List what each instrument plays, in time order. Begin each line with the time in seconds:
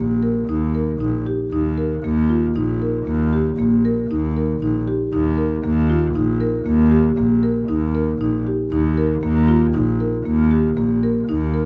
Already playing: double bass A#1, marimba A#3
0.23 marimba A#4
0.48 double bass D#2, marimba D#4
0.75 marimba A#4
1.00 double bass A#1, marimba D#4
1.26 marimba G4
1.52 double bass D#2, marimba D#4
1.78 marimba A#4
2.04 double bass D#2, marimba A#3
2.30 marimba F4
2.55 double bass A#1, marimba D#4
2.82 marimba A#4
3.06 double bass D#2, marimba A#3
3.33 marimba G4
3.58 double bass A#1, marimba A#3
3.85 marimba A#4
4.09 double bass D#2, marimba D#4
4.37 marimba A#4
4.61 double bass A#1, marimba D#4
4.88 marimba G4
5.13 double bass D#2, marimba D#4
5.38 marimba A#4
5.64 double bass D#2, marimba A#3
5.90 marimba F4
6.15 double bass A#1, marimba D#4
6.40 marimba A#4
6.65 double bass D#2, marimba A#3
6.91 marimba G4
7.17 double bass A#1, marimba A#3
7.43 marimba A#4
7.68 double bass D#2, marimba D#4
7.95 marimba A#4
8.20 double bass A#1, marimba D#4
8.47 marimba G4
8.71 double bass D#2, marimba D#4
8.98 marimba A#4
9.22 double bass D#2, marimba A#3
9.48 marimba F4
9.74 double bass A#1, marimba D#4
10.00 marimba A#4
10.26 double bass D#2, marimba A#3
10.51 marimba G4
10.77 double bass A#1, marimba A#3
11.03 marimba A#4
11.28 double bass D#2, marimba D#4
11.54 marimba A#4